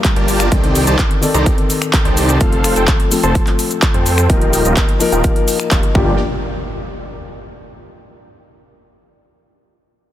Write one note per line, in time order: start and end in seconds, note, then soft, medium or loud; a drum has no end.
0.00 0.53 G2 medium
0.00 0.54 F3 medium
0.00 0.54 A#3 medium
0.00 0.53 D4 medium
0.00 0.53 G4 medium
0.00 downlifter medium
0.04 kick loud
0.04 clap loud
0.04 closed hi-hat loud
0.04 shaker soft
0.16 0.49 G1 medium
0.16 0.49 F4 medium
0.16 0.49 G4 medium
0.16 0.49 A#4 medium
0.16 0.49 D5 medium
0.16 0.49 A5 medium
0.16 closed hi-hat soft
0.28 open hi-hat loud
0.28 shaker medium
0.40 finger snap medium
0.40 closed hi-hat soft
0.40 shaker soft
0.51 0.85 C2 medium
0.51 1.19 D#3 medium
0.51 1.20 C4 medium
0.51 0.84 D#4 medium
0.51 0.84 G4 medium
0.51 1.20 A4 medium
0.51 0.84 C5 medium
0.51 0.84 D5 medium
0.51 1.20 D5 medium
0.51 0.84 G5 medium
0.51 kick loud
0.51 closed hi-hat medium
0.51 shaker soft
0.64 closed hi-hat soft
0.75 open hi-hat loud
0.75 shaker medium
0.87 1.04 C2 medium
0.87 1.06 D#4 medium
0.87 1.06 G4 medium
0.87 1.06 C5 medium
0.87 1.06 D5 medium
0.87 1.06 A5 medium
0.87 closed hi-hat soft
0.87 shaker soft
0.99 kick loud
0.99 clap loud
0.99 closed hi-hat medium
0.99 shaker soft
1.11 closed hi-hat soft
1.21 2.37 D#3 medium
1.21 2.38 C4 medium
1.21 2.38 A4 loud
1.21 2.38 D5 medium
1.21 open hi-hat loud
1.21 shaker medium
1.34 1.51 C2 loud
1.34 1.54 D#4 medium
1.34 1.54 G4 medium
1.34 1.54 C5 medium
1.34 1.54 D5 medium
1.34 1.54 A#5 loud
1.34 closed hi-hat soft
1.34 shaker soft
1.46 kick loud
1.46 closed hi-hat loud
1.46 shaker soft
1.58 closed hi-hat soft
1.70 open hi-hat loud
1.70 shaker medium
1.82 finger snap medium
1.82 closed hi-hat soft
1.82 shaker soft
1.93 kick loud
1.93 clap loud
1.93 closed hi-hat medium
1.93 shaker soft
2.05 2.38 C2 loud
2.05 2.38 D#4 medium
2.05 2.38 G4 medium
2.05 2.38 C5 medium
2.05 2.38 D5 medium
2.05 2.38 A5 loud
2.05 closed hi-hat soft
2.17 open hi-hat loud
2.17 shaker medium
2.29 closed hi-hat soft
2.29 shaker soft
2.40 2.74 F1 medium
2.40 3.08 F3 medium
2.40 3.09 A3 medium
2.40 3.09 C4 medium
2.40 2.73 A4 medium
2.40 3.09 A4 medium
2.40 2.73 C5 medium
2.40 2.73 F5 medium
2.40 kick loud
2.40 closed hi-hat medium
2.40 shaker soft
2.52 closed hi-hat soft
2.64 finger snap medium
2.64 open hi-hat loud
2.64 shaker medium
2.76 2.93 F1 loud
2.76 2.95 A4 medium
2.76 2.95 C5 medium
2.76 2.95 G5 medium
2.76 closed hi-hat soft
2.76 shaker soft
2.88 kick loud
2.88 clap loud
2.88 closed hi-hat medium
2.88 shaker soft
3.00 closed hi-hat soft
3.10 4.26 F3 medium
3.10 4.27 A3 medium
3.10 4.27 C4 medium
3.10 4.27 A4 loud
3.10 open hi-hat loud
3.10 shaker medium
3.23 3.40 F1 medium
3.23 3.43 A4 medium
3.23 3.43 C5 medium
3.23 3.43 A5 loud
3.23 closed hi-hat soft
3.23 shaker soft
3.35 kick loud
3.35 closed hi-hat medium
3.35 shaker soft
3.47 clap soft
3.47 closed hi-hat soft
3.59 open hi-hat loud
3.59 shaker medium
3.71 closed hi-hat soft
3.71 shaker soft
3.82 kick loud
3.82 clap loud
3.82 closed hi-hat medium
3.82 shaker soft
3.94 4.27 F2 medium
3.94 4.27 A4 medium
3.94 4.27 C5 medium
3.94 4.27 G5 medium
3.94 closed hi-hat soft
4.06 open hi-hat loud
4.06 shaker medium
4.18 finger snap medium
4.18 closed hi-hat soft
4.18 shaker soft
4.28 4.63 D#1 loud
4.28 4.97 F3 medium
4.28 4.97 A#3 medium
4.28 4.98 D#4 medium
4.28 4.62 F4 medium
4.28 4.62 G4 medium
4.28 4.62 A#4 medium
4.28 4.98 A#4 medium
4.28 4.62 D#5 medium
4.28 4.62 G5 medium
4.28 kick loud
4.28 closed hi-hat medium
4.28 shaker soft
4.41 closed hi-hat soft
4.53 open hi-hat loud
4.53 shaker medium
4.65 4.82 D#1 medium
4.65 4.84 F4 medium
4.65 4.84 G4 medium
4.65 4.84 A#4 medium
4.65 4.84 D#5 medium
4.65 4.84 A#5 medium
4.65 closed hi-hat soft
4.65 shaker soft
4.77 kick loud
4.77 clap loud
4.77 closed hi-hat medium
4.77 shaker soft
4.89 closed hi-hat soft
4.99 5.92 F3 loud
4.99 5.92 A#3 medium
4.99 5.93 D#4 medium
4.99 5.93 A#4 loud
4.99 open hi-hat loud
4.99 shaker medium
5.12 5.29 D#1 loud
5.12 5.32 F4 medium
5.12 5.32 G4 medium
5.12 5.32 A#4 medium
5.12 5.32 D#5 medium
5.12 5.32 G5 loud
5.12 closed hi-hat soft
5.12 shaker soft
5.24 kick loud
5.24 closed hi-hat medium
5.24 shaker soft
5.36 closed hi-hat soft
5.48 open hi-hat loud
5.48 shaker medium
5.60 finger snap medium
5.60 shaker soft
5.71 5.81 D#1 loud
5.71 5.84 F4 loud
5.71 5.84 G4 medium
5.71 5.83 A#4 medium
5.71 5.83 D#5 medium
5.71 5.83 F5 loud
5.71 kick loud
5.71 clap loud
5.71 closed hi-hat medium
5.71 shaker soft
5.83 closed hi-hat soft
5.93 6.17 G1 medium
5.93 6.12 F3 medium
5.93 6.12 A#3 medium
5.93 6.13 D4 medium
5.93 6.13 F4 medium
5.93 6.13 G4 medium
5.93 6.14 G4 loud
5.93 6.13 A#4 medium
5.93 6.13 D5 medium
5.93 6.13 G5 medium
5.93 kick loud
5.93 impact medium